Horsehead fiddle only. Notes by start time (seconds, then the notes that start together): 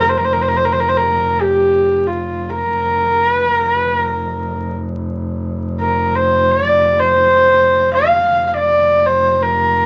0.00 A#4
0.09 C5
0.17 A#4
0.25 C5
0.33 A#4
0.42 C5
0.48 A#4
0.57 C5
0.65 A#4
0.72 C5
0.80 A#4
0.89 C5
0.97 A#4
1.41 G4
2.07 F4
2.50 A#4
3.29 B4
3.51 A#4
3.74 B4
3.96 A#4
5.80 A#4
6.15 C5
6.51 D5
6.99 C5
7.94 F5
8.47 F5
8.54 D5
9.06 C5
9.42 A#4